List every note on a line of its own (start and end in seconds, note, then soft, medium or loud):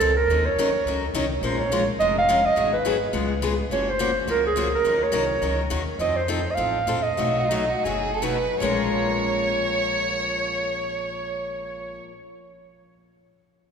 0.00 0.24 C#2 medium
0.00 0.10 F3 medium
0.00 0.10 C4 medium
0.00 0.11 D#4 medium
0.00 0.15 A4 medium
0.00 0.11 A4 medium
0.17 0.47 A#4 medium
0.28 0.51 D#2 medium
0.28 0.48 D#3 medium
0.28 0.48 F#3 medium
0.28 0.48 C#4 medium
0.28 0.48 D#4 medium
0.28 0.48 A#4 medium
0.45 1.02 C#5 medium
0.56 0.81 D#2 medium
0.56 0.68 D#3 medium
0.56 0.68 F#3 medium
0.56 0.68 C#4 medium
0.56 0.68 D#4 medium
0.56 0.69 A#4 medium
0.85 1.09 C#2 medium
0.85 1.05 D#3 medium
0.85 1.05 F#3 medium
0.85 1.05 C#4 medium
0.85 1.05 D#4 medium
0.85 1.05 A#4 medium
1.14 1.38 C2 medium
1.14 1.24 D#3 medium
1.14 1.25 F#3 medium
1.14 1.25 C#4 medium
1.14 1.25 D#4 loud
1.14 1.25 A#4 medium
1.41 1.87 A#1 medium
1.41 1.61 F3 medium
1.41 1.61 G#3 medium
1.41 1.62 C#4 medium
1.41 1.62 F4 medium
1.41 1.62 A#4 medium
1.41 1.60 C5 medium
1.59 1.87 C#5 medium
1.72 1.82 F3 medium
1.72 1.82 G#3 medium
1.72 1.82 C#4 medium
1.72 1.82 F4 medium
1.72 1.82 A#4 medium
2.00 2.45 F1 medium
2.00 2.19 F3 medium
2.00 2.19 G#3 medium
2.00 2.19 C#4 medium
2.00 2.19 F4 medium
2.00 2.19 A#4 medium
2.00 2.15 D#5 loud
2.18 2.47 F5 loud
2.29 2.39 F3 medium
2.29 2.39 G#3 medium
2.29 2.39 C#4 medium
2.29 2.39 F4 medium
2.29 2.39 A#4 loud
2.46 2.73 D#5 medium
2.56 3.02 G#1 medium
2.56 2.75 D#3 medium
2.56 2.76 F#3 medium
2.56 2.75 B3 medium
2.56 2.76 D#4 medium
2.56 2.76 G#4 medium
2.73 3.26 B4 medium
2.85 2.95 D#3 medium
2.85 2.96 F#3 medium
2.85 2.96 B3 medium
2.85 2.96 D#4 medium
2.85 2.96 G#4 medium
3.13 3.59 C#2 medium
3.13 3.32 C#3 medium
3.13 3.32 G#3 medium
3.13 3.32 B3 medium
3.13 3.32 F4 medium
3.13 3.33 G#4 medium
3.42 3.52 C#3 medium
3.42 3.53 G#3 medium
3.42 3.53 B3 medium
3.42 3.53 F4 medium
3.42 3.53 G#4 medium
3.70 4.16 F#1 medium
3.70 3.90 C#3 medium
3.70 3.90 F3 medium
3.70 3.90 A#3 medium
3.70 3.90 C#4 medium
3.70 3.90 F#4 medium
3.70 3.91 C#5 medium
3.89 4.17 C5 medium
3.99 4.10 C#3 medium
3.99 4.10 F3 medium
3.99 4.10 A#3 medium
3.99 4.10 C#4 medium
3.99 4.10 F#4 medium
4.27 4.73 C#2 medium
4.27 4.46 C#3 medium
4.27 4.46 F3 medium
4.27 4.47 A#3 medium
4.27 4.47 C#4 medium
4.27 4.47 F#4 medium
4.27 4.45 A#4 medium
4.47 4.72 G#4 medium
4.56 4.66 C#3 medium
4.56 4.67 F3 medium
4.56 4.67 A#3 medium
4.56 4.67 C#4 medium
4.56 4.67 F#4 loud
4.75 5.05 A#4 medium
4.84 5.08 D#2 medium
4.84 5.03 D#3 medium
4.84 5.04 F#3 medium
4.84 5.04 C#4 medium
4.84 5.04 D#4 medium
4.84 5.04 A#4 medium
5.03 5.60 C#5 medium
5.12 5.37 C2 medium
5.12 5.23 D#3 medium
5.12 5.23 F#3 medium
5.12 5.24 C#4 medium
5.12 5.24 D#4 medium
5.12 5.24 A#4 medium
5.41 5.66 C#2 medium
5.41 5.61 D#3 medium
5.41 5.61 F#3 medium
5.41 5.61 C#4 medium
5.41 5.61 D#4 medium
5.41 5.62 A#4 medium
5.70 5.95 D#2 medium
5.70 5.81 D#3 medium
5.70 5.81 F#3 medium
5.70 5.81 C#4 medium
5.70 5.81 D#4 medium
5.70 5.81 A#4 medium
5.99 6.46 F2 medium
5.99 6.18 F3 medium
5.99 6.19 C4 medium
5.99 6.19 D#4 medium
5.99 6.19 A4 medium
5.99 6.18 D#5 medium
6.16 6.52 C5 medium
6.28 6.39 F3 medium
6.28 6.39 C4 medium
6.28 6.39 D#4 medium
6.28 6.40 A4 medium
6.51 6.56 D#5 medium
6.51 7.05 F5 loud
6.57 6.83 A1 medium
6.57 6.77 F3 medium
6.57 6.77 C4 medium
6.57 6.77 D#4 medium
6.57 6.77 A4 medium
6.87 7.14 A#1 medium
6.87 6.98 F3 medium
6.87 6.99 C4 medium
6.87 6.99 D#4 medium
6.87 6.99 A4 medium
7.03 8.21 D#5 medium
7.17 7.72 B1 medium
7.17 7.39 B2 medium
7.17 7.39 F#3 medium
7.17 7.40 A3 medium
7.17 7.40 D#4 medium
7.17 7.40 F#4 medium
7.37 7.46 F#4 medium
7.44 7.51 F4 medium
7.49 7.63 B2 medium
7.49 7.63 F#3 medium
7.49 7.64 A3 medium
7.49 7.71 D#4 medium
7.49 7.64 D#4 medium
7.49 7.64 F#4 medium
7.69 7.85 F#4 medium
7.84 8.46 F#1 medium
7.84 8.09 B2 medium
7.84 8.09 F#3 medium
7.84 8.09 A3 medium
7.84 8.10 D#4 medium
7.84 8.10 F#4 medium
7.84 8.15 G#4 medium
8.14 8.24 A4 medium
8.22 8.36 B2 medium
8.22 8.36 F#3 medium
8.22 8.36 A3 medium
8.22 8.36 D#4 medium
8.22 8.37 F#4 medium
8.22 8.61 B4 medium
8.60 11.98 A#1 medium
8.60 12.10 A#2 medium
8.60 12.11 F3 medium
8.60 12.12 G#3 medium
8.60 12.12 C#4 medium
8.60 12.13 F4 medium
8.60 12.14 A#4 medium
8.60 11.98 C#5 medium